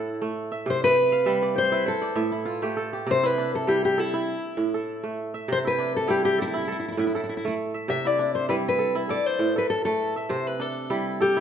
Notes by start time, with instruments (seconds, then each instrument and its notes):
Already playing: kora A2 D4 E4 A4, steel-string acoustic guitar E4
0.22 kora A3
0.52 kora E5
0.66 kora C3
0.70 steel-string acoustic guitar C5
0.84 steel-string acoustic guitar B4
1.12 kora F5
1.26 kora G3 E5
1.42 kora D5
1.56 kora C5, steel-string acoustic guitar C5
1.72 kora E4 B4
1.86 steel-string acoustic guitar A4, kora C5
2.02 kora D5
2.15 kora A2 E5
2.32 kora E4
2.45 kora F4
2.62 kora A3 G4
2.77 kora A4
2.93 kora G4
3.06 kora C3
3.11 steel-string acoustic guitar C5
3.23 kora E4, steel-string acoustic guitar B4
3.38 kora D4
3.55 steel-string acoustic guitar A4
3.67 kora G3 E4, steel-string acoustic guitar G4
3.85 steel-string acoustic guitar G4
3.98 steel-string acoustic guitar E4, kora A4
4.14 kora E4
4.57 kora A2
4.74 kora A4
5.03 kora A3
5.34 kora E5
5.48 kora C3
5.52 steel-string acoustic guitar C5
5.65 kora E4, steel-string acoustic guitar B4
5.78 kora D4
5.96 steel-string acoustic guitar A4
6.08 kora G3 E4, steel-string acoustic guitar G4
6.25 steel-string acoustic guitar G4
6.38 steel-string acoustic guitar E4, kora A4
6.47 steel-string acoustic guitar E4
6.54 kora E4, steel-string acoustic guitar E4
6.65 steel-string acoustic guitar E4, kora A4
6.72 steel-string acoustic guitar E4
6.80 steel-string acoustic guitar E4
6.88 steel-string acoustic guitar E4
6.92 steel-string acoustic guitar E4
6.97 kora A2, steel-string acoustic guitar E4
7.07 steel-string acoustic guitar E4
7.15 steel-string acoustic guitar E4, kora A4
7.24 steel-string acoustic guitar E4
7.29 steel-string acoustic guitar E4
7.37 steel-string acoustic guitar E4
7.45 kora A3, steel-string acoustic guitar E4
7.74 kora E5
7.88 kora C3, steel-string acoustic guitar E5
8.05 kora E4, steel-string acoustic guitar D5
8.19 kora D4
8.35 steel-string acoustic guitar C5
8.49 kora G3 E4, steel-string acoustic guitar B4
8.69 steel-string acoustic guitar B4
8.79 kora A4
8.95 kora E4
9.09 kora A4, steel-string acoustic guitar D5
9.26 steel-string acoustic guitar C5
9.39 kora A2
9.56 kora A4, steel-string acoustic guitar B4
9.70 steel-string acoustic guitar A4
9.85 kora A3, steel-string acoustic guitar A4
10.16 kora E5
10.29 kora C3, steel-string acoustic guitar C5
10.47 steel-string acoustic guitar B4
10.60 kora D4, steel-string acoustic guitar A4
10.90 kora G3 E4
11.21 steel-string acoustic guitar G4, kora A4
11.37 kora E4